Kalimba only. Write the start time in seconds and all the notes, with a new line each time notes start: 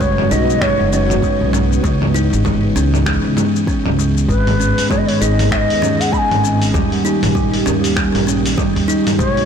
0.01 G#3
0.31 D#4
0.62 G#3
0.93 C#4
1.23 G#3
1.53 C#4
1.84 G#3
2.14 D#4
2.45 G#3
2.76 C#4
3.07 G#3
3.37 G#3
3.68 C#4
3.99 G#3
4.29 G#3
4.60 C#4
4.91 G#3
5.22 D#4
5.52 G#3
5.82 C#4
6.13 G#3
6.44 C#4
6.74 G3
7.05 D#4
7.35 G3
7.66 C#4
7.97 G3
8.27 C#4
8.58 G3
8.88 D#4
9.19 G#3